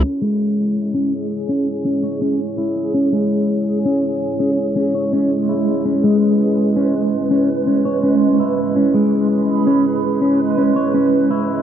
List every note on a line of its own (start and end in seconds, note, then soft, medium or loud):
0.03 11.62 G#3 medium
0.03 0.21 C#4 medium
0.03 11.62 C#4 medium
0.03 11.62 E4 medium
0.03 5.87 G#4 medium
0.03 5.83 C#5 medium
0.22 0.93 G#3 medium
0.94 1.12 C#4 medium
1.49 1.66 C#4 medium
1.85 2.02 C#4 medium
2.03 2.20 C#5 medium
2.22 2.39 C#4 medium
2.58 2.93 E4 medium
2.94 3.12 C#4 medium
3.12 3.84 G#3 medium
3.85 4.03 C#4 medium
4.40 4.57 C#4 medium
4.76 4.93 C#4 medium
4.95 5.11 C#5 medium
5.13 5.30 C#4 medium
5.49 5.84 E4 medium
5.85 6.03 C#4 medium
5.85 11.62 B4 medium
6.04 6.75 G#3 medium
6.76 6.94 C#4 medium
7.31 7.48 C#4 medium
7.67 7.84 C#4 medium
7.85 8.02 C#5 medium
8.03 8.38 C#4 medium
8.40 8.74 E4 medium
8.76 8.93 C#4 medium
8.94 9.65 G#3 medium
9.67 9.84 C#4 medium
10.22 10.39 C#4 medium
10.58 10.74 C#4 medium
10.76 10.93 C#5 medium
10.94 11.29 C#4 medium
11.31 11.62 E4 medium